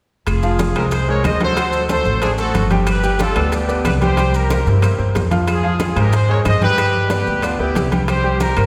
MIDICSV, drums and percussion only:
0, 0, Header, 1, 2, 480
1, 0, Start_track
1, 0, Tempo, 325380
1, 397, Time_signature, 4, 2, 24, 8
1, 12775, End_track
2, 0, Start_track
2, 0, Title_t, "Drums"
2, 392, Note_on_c, 9, 65, 78
2, 397, Note_on_c, 9, 75, 61
2, 399, Note_on_c, 9, 70, 65
2, 401, Note_on_c, 9, 60, 62
2, 403, Note_on_c, 9, 63, 34
2, 540, Note_off_c, 9, 65, 0
2, 545, Note_off_c, 9, 75, 0
2, 547, Note_off_c, 9, 70, 0
2, 549, Note_off_c, 9, 60, 0
2, 551, Note_off_c, 9, 63, 0
2, 630, Note_on_c, 9, 70, 50
2, 641, Note_on_c, 9, 63, 30
2, 778, Note_off_c, 9, 70, 0
2, 788, Note_off_c, 9, 63, 0
2, 870, Note_on_c, 9, 70, 68
2, 872, Note_on_c, 9, 65, 62
2, 877, Note_on_c, 9, 63, 88
2, 885, Note_on_c, 9, 60, 54
2, 1017, Note_off_c, 9, 70, 0
2, 1020, Note_off_c, 9, 65, 0
2, 1025, Note_off_c, 9, 63, 0
2, 1033, Note_off_c, 9, 60, 0
2, 1110, Note_on_c, 9, 70, 27
2, 1119, Note_on_c, 9, 65, 89
2, 1123, Note_on_c, 9, 75, 59
2, 1257, Note_off_c, 9, 70, 0
2, 1266, Note_off_c, 9, 65, 0
2, 1270, Note_off_c, 9, 75, 0
2, 1346, Note_on_c, 9, 70, 70
2, 1350, Note_on_c, 9, 63, 28
2, 1356, Note_on_c, 9, 65, 60
2, 1361, Note_on_c, 9, 60, 61
2, 1494, Note_off_c, 9, 70, 0
2, 1497, Note_off_c, 9, 63, 0
2, 1504, Note_off_c, 9, 65, 0
2, 1509, Note_off_c, 9, 60, 0
2, 1601, Note_on_c, 9, 63, 34
2, 1749, Note_off_c, 9, 63, 0
2, 1832, Note_on_c, 9, 65, 81
2, 1832, Note_on_c, 9, 66, 68
2, 1835, Note_on_c, 9, 70, 64
2, 1840, Note_on_c, 9, 75, 64
2, 1841, Note_on_c, 9, 63, 76
2, 1845, Note_on_c, 9, 60, 58
2, 1845, Note_on_c, 9, 61, 71
2, 1980, Note_off_c, 9, 65, 0
2, 1980, Note_off_c, 9, 66, 0
2, 1983, Note_off_c, 9, 70, 0
2, 1988, Note_off_c, 9, 75, 0
2, 1989, Note_off_c, 9, 63, 0
2, 1993, Note_off_c, 9, 60, 0
2, 1993, Note_off_c, 9, 61, 0
2, 2072, Note_on_c, 9, 63, 77
2, 2073, Note_on_c, 9, 65, 65
2, 2073, Note_on_c, 9, 70, 27
2, 2220, Note_off_c, 9, 63, 0
2, 2220, Note_off_c, 9, 70, 0
2, 2221, Note_off_c, 9, 65, 0
2, 2312, Note_on_c, 9, 65, 88
2, 2315, Note_on_c, 9, 70, 65
2, 2316, Note_on_c, 9, 75, 63
2, 2317, Note_on_c, 9, 63, 34
2, 2319, Note_on_c, 9, 60, 62
2, 2459, Note_off_c, 9, 65, 0
2, 2462, Note_off_c, 9, 70, 0
2, 2464, Note_off_c, 9, 75, 0
2, 2465, Note_off_c, 9, 63, 0
2, 2466, Note_off_c, 9, 60, 0
2, 2548, Note_on_c, 9, 70, 50
2, 2557, Note_on_c, 9, 63, 31
2, 2695, Note_off_c, 9, 70, 0
2, 2705, Note_off_c, 9, 63, 0
2, 2789, Note_on_c, 9, 65, 62
2, 2793, Note_on_c, 9, 70, 69
2, 2794, Note_on_c, 9, 63, 91
2, 2801, Note_on_c, 9, 60, 54
2, 2937, Note_off_c, 9, 65, 0
2, 2940, Note_off_c, 9, 70, 0
2, 2942, Note_off_c, 9, 63, 0
2, 2948, Note_off_c, 9, 60, 0
2, 3026, Note_on_c, 9, 70, 26
2, 3044, Note_on_c, 9, 60, 31
2, 3046, Note_on_c, 9, 63, 29
2, 3173, Note_off_c, 9, 70, 0
2, 3191, Note_off_c, 9, 60, 0
2, 3193, Note_off_c, 9, 63, 0
2, 3270, Note_on_c, 9, 65, 83
2, 3275, Note_on_c, 9, 70, 65
2, 3278, Note_on_c, 9, 63, 31
2, 3279, Note_on_c, 9, 75, 62
2, 3289, Note_on_c, 9, 60, 60
2, 3418, Note_off_c, 9, 65, 0
2, 3422, Note_off_c, 9, 70, 0
2, 3426, Note_off_c, 9, 63, 0
2, 3427, Note_off_c, 9, 75, 0
2, 3436, Note_off_c, 9, 60, 0
2, 3510, Note_on_c, 9, 70, 52
2, 3520, Note_on_c, 9, 63, 33
2, 3523, Note_on_c, 9, 60, 30
2, 3658, Note_off_c, 9, 70, 0
2, 3667, Note_off_c, 9, 63, 0
2, 3671, Note_off_c, 9, 60, 0
2, 3753, Note_on_c, 9, 70, 64
2, 3759, Note_on_c, 9, 60, 59
2, 3759, Note_on_c, 9, 61, 79
2, 3759, Note_on_c, 9, 65, 63
2, 3762, Note_on_c, 9, 63, 74
2, 3900, Note_off_c, 9, 70, 0
2, 3906, Note_off_c, 9, 60, 0
2, 3906, Note_off_c, 9, 61, 0
2, 3906, Note_off_c, 9, 65, 0
2, 3910, Note_off_c, 9, 63, 0
2, 3990, Note_on_c, 9, 60, 33
2, 3992, Note_on_c, 9, 65, 67
2, 3994, Note_on_c, 9, 70, 29
2, 4009, Note_on_c, 9, 63, 77
2, 4138, Note_off_c, 9, 60, 0
2, 4140, Note_off_c, 9, 65, 0
2, 4141, Note_off_c, 9, 70, 0
2, 4157, Note_off_c, 9, 63, 0
2, 4228, Note_on_c, 9, 70, 65
2, 4230, Note_on_c, 9, 65, 83
2, 4231, Note_on_c, 9, 60, 63
2, 4242, Note_on_c, 9, 75, 66
2, 4256, Note_on_c, 9, 63, 33
2, 4376, Note_off_c, 9, 70, 0
2, 4378, Note_off_c, 9, 60, 0
2, 4378, Note_off_c, 9, 65, 0
2, 4390, Note_off_c, 9, 75, 0
2, 4403, Note_off_c, 9, 63, 0
2, 4475, Note_on_c, 9, 70, 54
2, 4489, Note_on_c, 9, 63, 32
2, 4622, Note_off_c, 9, 70, 0
2, 4636, Note_off_c, 9, 63, 0
2, 4707, Note_on_c, 9, 70, 65
2, 4712, Note_on_c, 9, 60, 52
2, 4715, Note_on_c, 9, 65, 62
2, 4728, Note_on_c, 9, 63, 83
2, 4854, Note_off_c, 9, 70, 0
2, 4860, Note_off_c, 9, 60, 0
2, 4863, Note_off_c, 9, 65, 0
2, 4876, Note_off_c, 9, 63, 0
2, 4954, Note_on_c, 9, 65, 92
2, 4957, Note_on_c, 9, 70, 27
2, 4960, Note_on_c, 9, 75, 58
2, 5101, Note_off_c, 9, 65, 0
2, 5104, Note_off_c, 9, 70, 0
2, 5108, Note_off_c, 9, 75, 0
2, 5194, Note_on_c, 9, 70, 67
2, 5197, Note_on_c, 9, 60, 56
2, 5201, Note_on_c, 9, 65, 62
2, 5209, Note_on_c, 9, 63, 30
2, 5342, Note_off_c, 9, 70, 0
2, 5344, Note_off_c, 9, 60, 0
2, 5349, Note_off_c, 9, 65, 0
2, 5357, Note_off_c, 9, 63, 0
2, 5442, Note_on_c, 9, 63, 34
2, 5443, Note_on_c, 9, 70, 56
2, 5589, Note_off_c, 9, 63, 0
2, 5591, Note_off_c, 9, 70, 0
2, 5677, Note_on_c, 9, 60, 59
2, 5677, Note_on_c, 9, 61, 79
2, 5681, Note_on_c, 9, 65, 89
2, 5681, Note_on_c, 9, 66, 66
2, 5682, Note_on_c, 9, 70, 64
2, 5682, Note_on_c, 9, 75, 66
2, 5692, Note_on_c, 9, 63, 73
2, 5825, Note_off_c, 9, 60, 0
2, 5825, Note_off_c, 9, 61, 0
2, 5829, Note_off_c, 9, 65, 0
2, 5829, Note_off_c, 9, 66, 0
2, 5829, Note_off_c, 9, 75, 0
2, 5830, Note_off_c, 9, 70, 0
2, 5839, Note_off_c, 9, 63, 0
2, 5925, Note_on_c, 9, 65, 62
2, 5928, Note_on_c, 9, 70, 27
2, 5929, Note_on_c, 9, 63, 77
2, 6073, Note_off_c, 9, 65, 0
2, 6076, Note_off_c, 9, 63, 0
2, 6076, Note_off_c, 9, 70, 0
2, 6154, Note_on_c, 9, 65, 86
2, 6163, Note_on_c, 9, 60, 63
2, 6164, Note_on_c, 9, 75, 62
2, 6168, Note_on_c, 9, 70, 64
2, 6169, Note_on_c, 9, 63, 32
2, 6301, Note_off_c, 9, 65, 0
2, 6311, Note_off_c, 9, 60, 0
2, 6311, Note_off_c, 9, 75, 0
2, 6315, Note_off_c, 9, 70, 0
2, 6317, Note_off_c, 9, 63, 0
2, 6404, Note_on_c, 9, 70, 55
2, 6409, Note_on_c, 9, 63, 31
2, 6552, Note_off_c, 9, 70, 0
2, 6557, Note_off_c, 9, 63, 0
2, 6644, Note_on_c, 9, 63, 88
2, 6644, Note_on_c, 9, 70, 65
2, 6645, Note_on_c, 9, 65, 59
2, 6653, Note_on_c, 9, 60, 57
2, 6791, Note_off_c, 9, 70, 0
2, 6792, Note_off_c, 9, 63, 0
2, 6792, Note_off_c, 9, 65, 0
2, 6801, Note_off_c, 9, 60, 0
2, 6883, Note_on_c, 9, 60, 30
2, 6887, Note_on_c, 9, 63, 30
2, 6887, Note_on_c, 9, 70, 26
2, 7030, Note_off_c, 9, 60, 0
2, 7034, Note_off_c, 9, 63, 0
2, 7034, Note_off_c, 9, 70, 0
2, 7116, Note_on_c, 9, 65, 77
2, 7118, Note_on_c, 9, 63, 30
2, 7122, Note_on_c, 9, 60, 58
2, 7122, Note_on_c, 9, 75, 58
2, 7128, Note_on_c, 9, 70, 69
2, 7263, Note_off_c, 9, 65, 0
2, 7265, Note_off_c, 9, 63, 0
2, 7269, Note_off_c, 9, 60, 0
2, 7269, Note_off_c, 9, 75, 0
2, 7275, Note_off_c, 9, 70, 0
2, 7365, Note_on_c, 9, 60, 31
2, 7366, Note_on_c, 9, 63, 34
2, 7512, Note_off_c, 9, 60, 0
2, 7513, Note_off_c, 9, 63, 0
2, 7599, Note_on_c, 9, 65, 61
2, 7599, Note_on_c, 9, 66, 68
2, 7602, Note_on_c, 9, 63, 69
2, 7608, Note_on_c, 9, 60, 57
2, 7608, Note_on_c, 9, 61, 73
2, 7612, Note_on_c, 9, 70, 63
2, 7747, Note_off_c, 9, 65, 0
2, 7747, Note_off_c, 9, 66, 0
2, 7750, Note_off_c, 9, 63, 0
2, 7756, Note_off_c, 9, 60, 0
2, 7756, Note_off_c, 9, 61, 0
2, 7760, Note_off_c, 9, 70, 0
2, 7839, Note_on_c, 9, 63, 77
2, 7839, Note_on_c, 9, 65, 64
2, 7844, Note_on_c, 9, 70, 28
2, 7849, Note_on_c, 9, 60, 34
2, 7986, Note_off_c, 9, 63, 0
2, 7987, Note_off_c, 9, 65, 0
2, 7992, Note_off_c, 9, 70, 0
2, 7997, Note_off_c, 9, 60, 0
2, 8076, Note_on_c, 9, 70, 63
2, 8077, Note_on_c, 9, 65, 86
2, 8085, Note_on_c, 9, 63, 34
2, 8086, Note_on_c, 9, 60, 59
2, 8087, Note_on_c, 9, 75, 62
2, 8223, Note_off_c, 9, 70, 0
2, 8224, Note_off_c, 9, 65, 0
2, 8232, Note_off_c, 9, 63, 0
2, 8233, Note_off_c, 9, 60, 0
2, 8235, Note_off_c, 9, 75, 0
2, 8317, Note_on_c, 9, 63, 31
2, 8465, Note_off_c, 9, 63, 0
2, 8551, Note_on_c, 9, 63, 86
2, 8553, Note_on_c, 9, 70, 65
2, 8555, Note_on_c, 9, 65, 63
2, 8564, Note_on_c, 9, 60, 59
2, 8699, Note_off_c, 9, 63, 0
2, 8700, Note_off_c, 9, 70, 0
2, 8702, Note_off_c, 9, 65, 0
2, 8711, Note_off_c, 9, 60, 0
2, 8796, Note_on_c, 9, 70, 26
2, 8798, Note_on_c, 9, 75, 56
2, 8800, Note_on_c, 9, 65, 90
2, 8944, Note_off_c, 9, 70, 0
2, 8945, Note_off_c, 9, 75, 0
2, 8948, Note_off_c, 9, 65, 0
2, 9035, Note_on_c, 9, 70, 65
2, 9036, Note_on_c, 9, 63, 29
2, 9041, Note_on_c, 9, 65, 56
2, 9051, Note_on_c, 9, 60, 61
2, 9183, Note_off_c, 9, 70, 0
2, 9184, Note_off_c, 9, 63, 0
2, 9188, Note_off_c, 9, 65, 0
2, 9199, Note_off_c, 9, 60, 0
2, 9278, Note_on_c, 9, 63, 36
2, 9426, Note_off_c, 9, 63, 0
2, 9517, Note_on_c, 9, 63, 76
2, 9520, Note_on_c, 9, 60, 64
2, 9520, Note_on_c, 9, 61, 73
2, 9520, Note_on_c, 9, 70, 65
2, 9522, Note_on_c, 9, 75, 60
2, 9523, Note_on_c, 9, 65, 88
2, 9665, Note_off_c, 9, 63, 0
2, 9667, Note_off_c, 9, 60, 0
2, 9667, Note_off_c, 9, 61, 0
2, 9668, Note_off_c, 9, 70, 0
2, 9669, Note_off_c, 9, 75, 0
2, 9671, Note_off_c, 9, 65, 0
2, 9759, Note_on_c, 9, 63, 76
2, 9760, Note_on_c, 9, 70, 27
2, 9769, Note_on_c, 9, 65, 60
2, 9907, Note_off_c, 9, 63, 0
2, 9908, Note_off_c, 9, 70, 0
2, 9916, Note_off_c, 9, 65, 0
2, 10000, Note_on_c, 9, 70, 64
2, 10002, Note_on_c, 9, 63, 35
2, 10002, Note_on_c, 9, 75, 66
2, 10004, Note_on_c, 9, 60, 64
2, 10005, Note_on_c, 9, 65, 86
2, 10147, Note_off_c, 9, 70, 0
2, 10150, Note_off_c, 9, 63, 0
2, 10150, Note_off_c, 9, 75, 0
2, 10152, Note_off_c, 9, 60, 0
2, 10152, Note_off_c, 9, 65, 0
2, 10242, Note_on_c, 9, 63, 31
2, 10390, Note_off_c, 9, 63, 0
2, 10472, Note_on_c, 9, 60, 57
2, 10473, Note_on_c, 9, 63, 86
2, 10473, Note_on_c, 9, 65, 64
2, 10477, Note_on_c, 9, 70, 70
2, 10619, Note_off_c, 9, 60, 0
2, 10620, Note_off_c, 9, 63, 0
2, 10620, Note_off_c, 9, 65, 0
2, 10624, Note_off_c, 9, 70, 0
2, 10722, Note_on_c, 9, 70, 27
2, 10724, Note_on_c, 9, 60, 31
2, 10727, Note_on_c, 9, 63, 29
2, 10870, Note_off_c, 9, 70, 0
2, 10871, Note_off_c, 9, 60, 0
2, 10874, Note_off_c, 9, 63, 0
2, 10951, Note_on_c, 9, 65, 73
2, 10961, Note_on_c, 9, 75, 62
2, 10964, Note_on_c, 9, 60, 61
2, 10966, Note_on_c, 9, 63, 32
2, 10967, Note_on_c, 9, 70, 70
2, 11099, Note_off_c, 9, 65, 0
2, 11109, Note_off_c, 9, 75, 0
2, 11111, Note_off_c, 9, 60, 0
2, 11114, Note_off_c, 9, 63, 0
2, 11115, Note_off_c, 9, 70, 0
2, 11208, Note_on_c, 9, 60, 31
2, 11210, Note_on_c, 9, 63, 34
2, 11356, Note_off_c, 9, 60, 0
2, 11358, Note_off_c, 9, 63, 0
2, 11438, Note_on_c, 9, 65, 64
2, 11438, Note_on_c, 9, 66, 66
2, 11445, Note_on_c, 9, 63, 77
2, 11450, Note_on_c, 9, 70, 67
2, 11452, Note_on_c, 9, 60, 63
2, 11452, Note_on_c, 9, 61, 76
2, 11586, Note_off_c, 9, 65, 0
2, 11586, Note_off_c, 9, 66, 0
2, 11592, Note_off_c, 9, 63, 0
2, 11598, Note_off_c, 9, 70, 0
2, 11599, Note_off_c, 9, 60, 0
2, 11599, Note_off_c, 9, 61, 0
2, 11680, Note_on_c, 9, 60, 34
2, 11682, Note_on_c, 9, 70, 26
2, 11683, Note_on_c, 9, 65, 66
2, 11692, Note_on_c, 9, 63, 79
2, 11827, Note_off_c, 9, 60, 0
2, 11829, Note_off_c, 9, 70, 0
2, 11831, Note_off_c, 9, 65, 0
2, 11839, Note_off_c, 9, 63, 0
2, 11920, Note_on_c, 9, 65, 85
2, 11923, Note_on_c, 9, 60, 61
2, 11926, Note_on_c, 9, 63, 34
2, 11926, Note_on_c, 9, 75, 60
2, 11928, Note_on_c, 9, 70, 62
2, 12068, Note_off_c, 9, 65, 0
2, 12070, Note_off_c, 9, 60, 0
2, 12074, Note_off_c, 9, 63, 0
2, 12074, Note_off_c, 9, 75, 0
2, 12075, Note_off_c, 9, 70, 0
2, 12166, Note_on_c, 9, 63, 33
2, 12313, Note_off_c, 9, 63, 0
2, 12394, Note_on_c, 9, 70, 63
2, 12398, Note_on_c, 9, 60, 55
2, 12401, Note_on_c, 9, 63, 85
2, 12402, Note_on_c, 9, 65, 67
2, 12542, Note_off_c, 9, 70, 0
2, 12545, Note_off_c, 9, 60, 0
2, 12549, Note_off_c, 9, 63, 0
2, 12550, Note_off_c, 9, 65, 0
2, 12637, Note_on_c, 9, 65, 91
2, 12642, Note_on_c, 9, 75, 56
2, 12649, Note_on_c, 9, 70, 30
2, 12775, Note_off_c, 9, 65, 0
2, 12775, Note_off_c, 9, 70, 0
2, 12775, Note_off_c, 9, 75, 0
2, 12775, End_track
0, 0, End_of_file